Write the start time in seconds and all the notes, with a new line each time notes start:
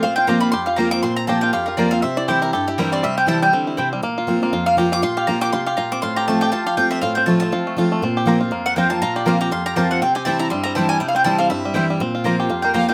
Already playing: F4
0.03 A#2 C4 F5
0.16 F4 G5
0.27 F3 A#3 C4 F4 G4 C5 A#5
0.40 F4 B5
0.52 F2 G4 C6
0.66 F4 F5
0.76 F3 A#3 C4 F4 C5 A#5
0.91 C4 D6
1.03 A#2 C4 C6
1.16 A#5
1.27 F3 A#3 C4 F4 G4 C5 A5 A#5
1.41 F4 G5
1.53 F2 G4 F5
1.66 F4 A#4
1.77 F3 A#3 C4 F4 C5 D5 A#5
1.91 C4 F5
2.02 C3 C4 E5
2.17 E4 D5
2.28 E3 G3 C4 E4 G4 C5 G5
2.42 E4 A#4
2.53 G2 G4 A4
2.68 E4 G4
2.78 E3 G3 C4 E4 A#4 C5 G5
2.92 C4 D5
3.03 C3 G3 E5
3.17 C4 G5
3.27 E3 G3 C4 E4 C5 G5 A5
3.42 G3 G5
3.53 D3 C4
3.67 E4
3.77 C3 C4 E4 C5 G5
3.93 G3
4.03 A#2 A#3
4.18 F4
4.27 F3 A#3 C4 F4
4.42 A#3 C4 F4
4.53 F2 F4
4.66 A#3 F5
4.77 F3 A#3 C4 F4 G4 A#5
4.92 F4 D6
5.02 A#2 F4 C6
5.17 G4 F5
5.27 F3 A#3 C4 F4 A#5
5.41 G4 D6
5.52 C3 F4 C6
5.66 G4 F5
5.77 A#2 F4 A#5
5.92 C4 D6
6.02 A2 F4 C6
6.16 G4 A#5
6.28 F3 A3 C4 F4 A5
6.41 G4 G5
6.52 F3 F4 A5
6.66 G4 F5
6.77 F3 A3 C4 F4 G5
6.91 C4 E5
7.01 A2 F4 F5
7.15 C4 G5
7.26 F3 A3 C4 F4 A5
7.40 C4 A5
7.52 F3 F4
7.67 A3
7.76 F3 A3 C4 F4
7.92 A3
8.02 A#2 C4
8.17 G4
8.26 F3 A#3 C4 F4 C5 A#5
8.40 C4 F4
8.51 F2 A#3
8.66 C4 F#5
8.76 F3 A#3 C4 F4 C5 G5 A#5
8.90 A#3 C4 F4 A5
9.02 A#2 F4 A#5
9.16 G4 D5
9.25 F3 A#3 C4 F4 C5 F5 A#5
9.41 G4 A#5
9.51 F2 F4 C6
9.66 G4 A#5
9.76 F3 A#3 C4 F4 C5 A5 A#5
9.91 C4 F#5
10.02 C3 C4 G5
10.15 G4 G#5
10.25 E3 G3 C4 E4 C5 G5 A5
10.39 E4 A#5
10.50 G2 G3 C6
10.63 C4 A#5
10.75 E3 G3 C4 E4 C5 G5 A5
10.89 G3 G#5
11.00 C3 E4 G5
11.08 F5
11.15 C4 G5
11.24 E3 G3 C4 E4 C5 G5 A5
11.38 C4 F5
11.50 G2 E4 E5
11.65 G3
11.74 E3 G3 C4 E4 C5 G5
11.90 G3
12.00 A#2 C4
12.15 F4
12.24 F3 A#3 C4 F4 C5 A#5
12.40 G4
12.49 F2 F4
12.62 A#3 A#4 G5
12.74 F3 A#3 C4 F4 G4 C5 F5 A#5
12.89 F4 A#4 G5